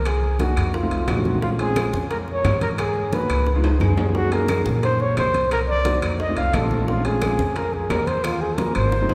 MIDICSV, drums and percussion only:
0, 0, Header, 1, 2, 480
1, 0, Start_track
1, 0, Tempo, 340909
1, 86, Time_signature, 4, 2, 24, 8
1, 12869, End_track
2, 0, Start_track
2, 0, Title_t, "Drums"
2, 77, Note_on_c, 9, 65, 89
2, 79, Note_on_c, 9, 75, 58
2, 82, Note_on_c, 9, 63, 35
2, 91, Note_on_c, 9, 60, 71
2, 218, Note_off_c, 9, 65, 0
2, 220, Note_off_c, 9, 75, 0
2, 223, Note_off_c, 9, 63, 0
2, 231, Note_off_c, 9, 60, 0
2, 321, Note_on_c, 9, 63, 33
2, 462, Note_off_c, 9, 63, 0
2, 554, Note_on_c, 9, 63, 86
2, 561, Note_on_c, 9, 60, 61
2, 561, Note_on_c, 9, 65, 64
2, 561, Note_on_c, 9, 66, 55
2, 695, Note_off_c, 9, 63, 0
2, 701, Note_off_c, 9, 65, 0
2, 701, Note_off_c, 9, 66, 0
2, 702, Note_off_c, 9, 60, 0
2, 796, Note_on_c, 9, 75, 59
2, 798, Note_on_c, 9, 63, 33
2, 804, Note_on_c, 9, 65, 97
2, 805, Note_on_c, 9, 60, 36
2, 937, Note_off_c, 9, 75, 0
2, 939, Note_off_c, 9, 63, 0
2, 945, Note_off_c, 9, 65, 0
2, 946, Note_off_c, 9, 60, 0
2, 1041, Note_on_c, 9, 63, 34
2, 1044, Note_on_c, 9, 60, 70
2, 1181, Note_off_c, 9, 63, 0
2, 1184, Note_off_c, 9, 60, 0
2, 1281, Note_on_c, 9, 63, 35
2, 1283, Note_on_c, 9, 60, 34
2, 1285, Note_on_c, 9, 65, 70
2, 1422, Note_off_c, 9, 63, 0
2, 1423, Note_off_c, 9, 60, 0
2, 1426, Note_off_c, 9, 65, 0
2, 1517, Note_on_c, 9, 65, 94
2, 1517, Note_on_c, 9, 66, 83
2, 1521, Note_on_c, 9, 63, 84
2, 1522, Note_on_c, 9, 60, 34
2, 1522, Note_on_c, 9, 61, 80
2, 1523, Note_on_c, 9, 75, 65
2, 1657, Note_off_c, 9, 65, 0
2, 1657, Note_off_c, 9, 66, 0
2, 1661, Note_off_c, 9, 63, 0
2, 1663, Note_off_c, 9, 60, 0
2, 1663, Note_off_c, 9, 61, 0
2, 1664, Note_off_c, 9, 75, 0
2, 1762, Note_on_c, 9, 63, 80
2, 1769, Note_on_c, 9, 60, 35
2, 1903, Note_off_c, 9, 63, 0
2, 1910, Note_off_c, 9, 60, 0
2, 2001, Note_on_c, 9, 63, 33
2, 2005, Note_on_c, 9, 60, 75
2, 2142, Note_off_c, 9, 63, 0
2, 2146, Note_off_c, 9, 60, 0
2, 2241, Note_on_c, 9, 65, 78
2, 2245, Note_on_c, 9, 63, 33
2, 2382, Note_off_c, 9, 65, 0
2, 2386, Note_off_c, 9, 63, 0
2, 2480, Note_on_c, 9, 63, 92
2, 2483, Note_on_c, 9, 75, 69
2, 2484, Note_on_c, 9, 65, 87
2, 2484, Note_on_c, 9, 66, 55
2, 2487, Note_on_c, 9, 60, 62
2, 2621, Note_off_c, 9, 63, 0
2, 2624, Note_off_c, 9, 75, 0
2, 2625, Note_off_c, 9, 65, 0
2, 2625, Note_off_c, 9, 66, 0
2, 2628, Note_off_c, 9, 60, 0
2, 2724, Note_on_c, 9, 63, 93
2, 2726, Note_on_c, 9, 60, 34
2, 2865, Note_off_c, 9, 63, 0
2, 2867, Note_off_c, 9, 60, 0
2, 2965, Note_on_c, 9, 65, 61
2, 2966, Note_on_c, 9, 60, 64
2, 2967, Note_on_c, 9, 63, 32
2, 3106, Note_off_c, 9, 65, 0
2, 3107, Note_off_c, 9, 60, 0
2, 3108, Note_off_c, 9, 63, 0
2, 3206, Note_on_c, 9, 60, 34
2, 3207, Note_on_c, 9, 63, 35
2, 3347, Note_off_c, 9, 60, 0
2, 3348, Note_off_c, 9, 63, 0
2, 3444, Note_on_c, 9, 65, 92
2, 3444, Note_on_c, 9, 66, 85
2, 3447, Note_on_c, 9, 63, 83
2, 3447, Note_on_c, 9, 75, 71
2, 3451, Note_on_c, 9, 60, 32
2, 3451, Note_on_c, 9, 61, 84
2, 3584, Note_off_c, 9, 65, 0
2, 3584, Note_off_c, 9, 66, 0
2, 3587, Note_off_c, 9, 63, 0
2, 3588, Note_off_c, 9, 75, 0
2, 3591, Note_off_c, 9, 60, 0
2, 3591, Note_off_c, 9, 61, 0
2, 3679, Note_on_c, 9, 63, 82
2, 3681, Note_on_c, 9, 65, 72
2, 3686, Note_on_c, 9, 60, 34
2, 3820, Note_off_c, 9, 63, 0
2, 3821, Note_off_c, 9, 65, 0
2, 3827, Note_off_c, 9, 60, 0
2, 3919, Note_on_c, 9, 65, 98
2, 3921, Note_on_c, 9, 63, 32
2, 3927, Note_on_c, 9, 60, 72
2, 3927, Note_on_c, 9, 75, 64
2, 4060, Note_off_c, 9, 65, 0
2, 4062, Note_off_c, 9, 63, 0
2, 4067, Note_off_c, 9, 75, 0
2, 4068, Note_off_c, 9, 60, 0
2, 4162, Note_on_c, 9, 63, 33
2, 4303, Note_off_c, 9, 63, 0
2, 4401, Note_on_c, 9, 63, 93
2, 4404, Note_on_c, 9, 65, 60
2, 4404, Note_on_c, 9, 66, 52
2, 4406, Note_on_c, 9, 60, 59
2, 4542, Note_off_c, 9, 63, 0
2, 4545, Note_off_c, 9, 65, 0
2, 4545, Note_off_c, 9, 66, 0
2, 4547, Note_off_c, 9, 60, 0
2, 4642, Note_on_c, 9, 63, 33
2, 4642, Note_on_c, 9, 65, 94
2, 4646, Note_on_c, 9, 60, 34
2, 4647, Note_on_c, 9, 75, 68
2, 4782, Note_off_c, 9, 65, 0
2, 4783, Note_off_c, 9, 63, 0
2, 4787, Note_off_c, 9, 60, 0
2, 4788, Note_off_c, 9, 75, 0
2, 4879, Note_on_c, 9, 60, 60
2, 4879, Note_on_c, 9, 63, 32
2, 5020, Note_off_c, 9, 60, 0
2, 5020, Note_off_c, 9, 63, 0
2, 5118, Note_on_c, 9, 63, 35
2, 5123, Note_on_c, 9, 65, 104
2, 5125, Note_on_c, 9, 60, 34
2, 5259, Note_off_c, 9, 63, 0
2, 5264, Note_off_c, 9, 65, 0
2, 5266, Note_off_c, 9, 60, 0
2, 5352, Note_on_c, 9, 63, 89
2, 5363, Note_on_c, 9, 60, 31
2, 5363, Note_on_c, 9, 61, 76
2, 5363, Note_on_c, 9, 65, 82
2, 5366, Note_on_c, 9, 75, 65
2, 5492, Note_off_c, 9, 63, 0
2, 5503, Note_off_c, 9, 65, 0
2, 5504, Note_off_c, 9, 60, 0
2, 5504, Note_off_c, 9, 61, 0
2, 5507, Note_off_c, 9, 75, 0
2, 5595, Note_on_c, 9, 63, 76
2, 5598, Note_on_c, 9, 66, 103
2, 5604, Note_on_c, 9, 60, 33
2, 5735, Note_off_c, 9, 63, 0
2, 5739, Note_off_c, 9, 66, 0
2, 5745, Note_off_c, 9, 60, 0
2, 5839, Note_on_c, 9, 63, 33
2, 5841, Note_on_c, 9, 60, 68
2, 5979, Note_off_c, 9, 63, 0
2, 5982, Note_off_c, 9, 60, 0
2, 6080, Note_on_c, 9, 63, 34
2, 6080, Note_on_c, 9, 65, 74
2, 6221, Note_off_c, 9, 63, 0
2, 6221, Note_off_c, 9, 65, 0
2, 6314, Note_on_c, 9, 63, 99
2, 6318, Note_on_c, 9, 65, 88
2, 6318, Note_on_c, 9, 66, 56
2, 6327, Note_on_c, 9, 60, 59
2, 6327, Note_on_c, 9, 75, 70
2, 6455, Note_off_c, 9, 63, 0
2, 6458, Note_off_c, 9, 65, 0
2, 6458, Note_off_c, 9, 66, 0
2, 6468, Note_off_c, 9, 60, 0
2, 6468, Note_off_c, 9, 75, 0
2, 6556, Note_on_c, 9, 63, 97
2, 6565, Note_on_c, 9, 60, 33
2, 6697, Note_off_c, 9, 63, 0
2, 6706, Note_off_c, 9, 60, 0
2, 6800, Note_on_c, 9, 63, 33
2, 6803, Note_on_c, 9, 60, 67
2, 6806, Note_on_c, 9, 65, 65
2, 6941, Note_off_c, 9, 63, 0
2, 6944, Note_off_c, 9, 60, 0
2, 6947, Note_off_c, 9, 65, 0
2, 7038, Note_on_c, 9, 63, 37
2, 7039, Note_on_c, 9, 60, 34
2, 7179, Note_off_c, 9, 63, 0
2, 7180, Note_off_c, 9, 60, 0
2, 7280, Note_on_c, 9, 65, 91
2, 7280, Note_on_c, 9, 66, 78
2, 7281, Note_on_c, 9, 63, 81
2, 7284, Note_on_c, 9, 75, 67
2, 7290, Note_on_c, 9, 60, 34
2, 7290, Note_on_c, 9, 61, 83
2, 7420, Note_off_c, 9, 65, 0
2, 7420, Note_off_c, 9, 66, 0
2, 7421, Note_off_c, 9, 63, 0
2, 7425, Note_off_c, 9, 75, 0
2, 7431, Note_off_c, 9, 60, 0
2, 7431, Note_off_c, 9, 61, 0
2, 7518, Note_on_c, 9, 63, 81
2, 7524, Note_on_c, 9, 60, 35
2, 7524, Note_on_c, 9, 65, 72
2, 7659, Note_off_c, 9, 63, 0
2, 7665, Note_off_c, 9, 60, 0
2, 7665, Note_off_c, 9, 65, 0
2, 7761, Note_on_c, 9, 63, 36
2, 7762, Note_on_c, 9, 65, 87
2, 7763, Note_on_c, 9, 75, 58
2, 7771, Note_on_c, 9, 60, 74
2, 7902, Note_off_c, 9, 63, 0
2, 7903, Note_off_c, 9, 65, 0
2, 7904, Note_off_c, 9, 75, 0
2, 7911, Note_off_c, 9, 60, 0
2, 8003, Note_on_c, 9, 63, 33
2, 8144, Note_off_c, 9, 63, 0
2, 8236, Note_on_c, 9, 63, 94
2, 8237, Note_on_c, 9, 65, 67
2, 8237, Note_on_c, 9, 66, 52
2, 8245, Note_on_c, 9, 60, 58
2, 8377, Note_off_c, 9, 63, 0
2, 8378, Note_off_c, 9, 65, 0
2, 8378, Note_off_c, 9, 66, 0
2, 8385, Note_off_c, 9, 60, 0
2, 8481, Note_on_c, 9, 65, 99
2, 8482, Note_on_c, 9, 63, 36
2, 8483, Note_on_c, 9, 75, 61
2, 8488, Note_on_c, 9, 60, 34
2, 8622, Note_off_c, 9, 63, 0
2, 8622, Note_off_c, 9, 65, 0
2, 8624, Note_off_c, 9, 75, 0
2, 8628, Note_off_c, 9, 60, 0
2, 8721, Note_on_c, 9, 63, 32
2, 8727, Note_on_c, 9, 60, 69
2, 8862, Note_off_c, 9, 63, 0
2, 8868, Note_off_c, 9, 60, 0
2, 8963, Note_on_c, 9, 65, 75
2, 8967, Note_on_c, 9, 63, 36
2, 8968, Note_on_c, 9, 60, 35
2, 9103, Note_off_c, 9, 65, 0
2, 9107, Note_off_c, 9, 63, 0
2, 9109, Note_off_c, 9, 60, 0
2, 9202, Note_on_c, 9, 65, 94
2, 9202, Note_on_c, 9, 66, 91
2, 9205, Note_on_c, 9, 63, 83
2, 9206, Note_on_c, 9, 75, 65
2, 9211, Note_on_c, 9, 60, 34
2, 9211, Note_on_c, 9, 61, 81
2, 9343, Note_off_c, 9, 65, 0
2, 9343, Note_off_c, 9, 66, 0
2, 9346, Note_off_c, 9, 63, 0
2, 9347, Note_off_c, 9, 75, 0
2, 9352, Note_off_c, 9, 60, 0
2, 9352, Note_off_c, 9, 61, 0
2, 9444, Note_on_c, 9, 63, 81
2, 9446, Note_on_c, 9, 60, 36
2, 9585, Note_off_c, 9, 63, 0
2, 9587, Note_off_c, 9, 60, 0
2, 9685, Note_on_c, 9, 63, 34
2, 9690, Note_on_c, 9, 60, 71
2, 9826, Note_off_c, 9, 63, 0
2, 9831, Note_off_c, 9, 60, 0
2, 9922, Note_on_c, 9, 63, 35
2, 9923, Note_on_c, 9, 65, 75
2, 10063, Note_off_c, 9, 63, 0
2, 10064, Note_off_c, 9, 65, 0
2, 10159, Note_on_c, 9, 65, 85
2, 10159, Note_on_c, 9, 66, 54
2, 10161, Note_on_c, 9, 63, 90
2, 10164, Note_on_c, 9, 75, 63
2, 10166, Note_on_c, 9, 60, 62
2, 10300, Note_off_c, 9, 65, 0
2, 10300, Note_off_c, 9, 66, 0
2, 10302, Note_off_c, 9, 63, 0
2, 10305, Note_off_c, 9, 75, 0
2, 10307, Note_off_c, 9, 60, 0
2, 10405, Note_on_c, 9, 63, 92
2, 10407, Note_on_c, 9, 60, 35
2, 10546, Note_off_c, 9, 63, 0
2, 10548, Note_off_c, 9, 60, 0
2, 10640, Note_on_c, 9, 65, 64
2, 10643, Note_on_c, 9, 63, 31
2, 10649, Note_on_c, 9, 60, 71
2, 10781, Note_off_c, 9, 65, 0
2, 10784, Note_off_c, 9, 63, 0
2, 10790, Note_off_c, 9, 60, 0
2, 10885, Note_on_c, 9, 63, 35
2, 10889, Note_on_c, 9, 60, 33
2, 11026, Note_off_c, 9, 63, 0
2, 11030, Note_off_c, 9, 60, 0
2, 11124, Note_on_c, 9, 63, 79
2, 11126, Note_on_c, 9, 75, 71
2, 11127, Note_on_c, 9, 65, 91
2, 11127, Note_on_c, 9, 66, 91
2, 11131, Note_on_c, 9, 60, 35
2, 11131, Note_on_c, 9, 61, 81
2, 11265, Note_off_c, 9, 63, 0
2, 11267, Note_off_c, 9, 75, 0
2, 11268, Note_off_c, 9, 65, 0
2, 11268, Note_off_c, 9, 66, 0
2, 11272, Note_off_c, 9, 60, 0
2, 11272, Note_off_c, 9, 61, 0
2, 11363, Note_on_c, 9, 63, 74
2, 11368, Note_on_c, 9, 65, 69
2, 11372, Note_on_c, 9, 60, 35
2, 11503, Note_off_c, 9, 63, 0
2, 11509, Note_off_c, 9, 65, 0
2, 11513, Note_off_c, 9, 60, 0
2, 11601, Note_on_c, 9, 65, 95
2, 11606, Note_on_c, 9, 75, 63
2, 11609, Note_on_c, 9, 60, 83
2, 11609, Note_on_c, 9, 63, 34
2, 11741, Note_off_c, 9, 65, 0
2, 11747, Note_off_c, 9, 75, 0
2, 11749, Note_off_c, 9, 63, 0
2, 11750, Note_off_c, 9, 60, 0
2, 11844, Note_on_c, 9, 63, 33
2, 11985, Note_off_c, 9, 63, 0
2, 12079, Note_on_c, 9, 65, 65
2, 12079, Note_on_c, 9, 66, 60
2, 12084, Note_on_c, 9, 63, 98
2, 12086, Note_on_c, 9, 60, 94
2, 12220, Note_off_c, 9, 65, 0
2, 12220, Note_off_c, 9, 66, 0
2, 12225, Note_off_c, 9, 63, 0
2, 12227, Note_off_c, 9, 60, 0
2, 12320, Note_on_c, 9, 65, 94
2, 12327, Note_on_c, 9, 63, 35
2, 12329, Note_on_c, 9, 75, 65
2, 12461, Note_off_c, 9, 65, 0
2, 12468, Note_off_c, 9, 63, 0
2, 12470, Note_off_c, 9, 75, 0
2, 12563, Note_on_c, 9, 61, 80
2, 12565, Note_on_c, 9, 63, 32
2, 12704, Note_off_c, 9, 61, 0
2, 12706, Note_off_c, 9, 63, 0
2, 12802, Note_on_c, 9, 65, 86
2, 12806, Note_on_c, 9, 61, 67
2, 12807, Note_on_c, 9, 63, 91
2, 12869, Note_off_c, 9, 61, 0
2, 12869, Note_off_c, 9, 63, 0
2, 12869, Note_off_c, 9, 65, 0
2, 12869, End_track
0, 0, End_of_file